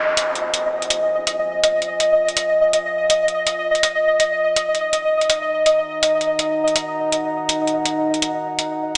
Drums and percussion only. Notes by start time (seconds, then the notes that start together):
0.17 closed hi-hat
0.35 closed hi-hat
0.54 closed hi-hat
0.82 closed hi-hat
0.90 closed hi-hat
1.27 closed hi-hat
1.64 closed hi-hat
1.82 closed hi-hat
2.00 closed hi-hat
2.28 closed hi-hat
2.37 closed hi-hat
2.73 closed hi-hat
3.10 closed hi-hat
3.28 closed hi-hat
3.47 closed hi-hat
3.75 closed hi-hat
3.83 closed hi-hat
4.20 closed hi-hat
4.56 closed hi-hat
4.75 closed hi-hat
4.93 closed hi-hat
5.21 closed hi-hat
5.30 closed hi-hat
5.66 closed hi-hat
6.03 closed hi-hat
6.21 closed hi-hat
6.39 closed hi-hat
6.68 closed hi-hat
6.76 closed hi-hat
7.12 closed hi-hat
7.49 closed hi-hat
7.67 closed hi-hat
7.85 closed hi-hat
8.14 closed hi-hat
8.22 closed hi-hat
8.59 closed hi-hat